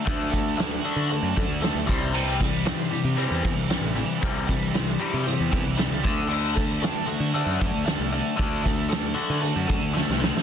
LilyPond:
<<
  \new Staff \with { instrumentName = "Overdriven electric guitar" } { \time 4/4 \key d \mixolydian \tempo 4 = 115 <d a d'>8 a8 d'8 fis'8 d'8 d8 a8 c8 | c8 g8 c'8 g'8 c'8 e8 g8 e8 | c8 g8 c'8 g'8 c'8 e8 g8 d8 | d8 a8 d'8 fis'8 d'8 d8 a8 d8 |
d8 a8 d'8 fis'8 d'8 d8 a8 d8 | }
  \new Staff \with { instrumentName = "Overdriven electric guitar" } { \clef bass \time 4/4 \key d \mixolydian <d a d'>8 <d a>8 <d a>8 <d a d'>8 <d a>8 <d a>8 <d a>8 <c e g>8 | <c e g>8 <c e>8 <c e>8 <c e>8 <c e g>8 <c e>8 <c e>8 <c e>8 | <c e g>8 <c e>8 <c e>8 <c e g>8 <c e>8 <c e>8 <c e>8 <d a d'>8 | <d a d'>8 <d a>8 <d a>8 <d a>8 <d a d'>8 <d a>8 <d a>8 <d a>8 |
<d a d'>8 <d a>8 <d a>8 <d a d'>8 <d a>8 <d a>8 <d a>8 <d a>8 | }
  \new Staff \with { instrumentName = "Picked electric bass" } { \clef bass \time 4/4 \key d \mixolydian d,4.~ d,16 d8 fis,16 fis,16 d,8 d,16 c,8~ | c,4. r16 c8 e,16 e,16 c,8 a,,8 r16 | c,4.~ c,16 c8 e,16 e,16 c,8 cis,16 d,8~ | d,4. r16 d8 fis,16 fis,16 d,8 c,8 r16 |
d,4.~ d,16 d8 fis,16 fis,16 d,8 c,8 r16 | }
  \new DrumStaff \with { instrumentName = "Drums" } \drummode { \time 4/4 <hh bd>16 hh16 <hh bd>8 <hh sn>16 hh16 hh8 hh8 <hh bd>8 <hh sn>8 <hh bd>16 hh16 | cymc8 <hh bd>16 hh16 <hh sn>8 hh8 hh16 hh16 <hh bd>8 <hh sn>8 hh8 | <hh bd>16 hh16 <hh bd>8 <hh sn>16 hh16 hh8 hh8 <hh bd>8 <hh sn>8 <hh bd>16 hh16 | cymc8 <hh bd>16 hh16 <hh sn>8 hh8 hh16 hh16 <hh bd>8 <hh sn>8 hh8 |
<hh bd>16 hh16 <hh bd>8 <hh sn>16 hh16 hh8 hh8 <hh bd>8 sn16 sn16 sn16 sn16 | }
>>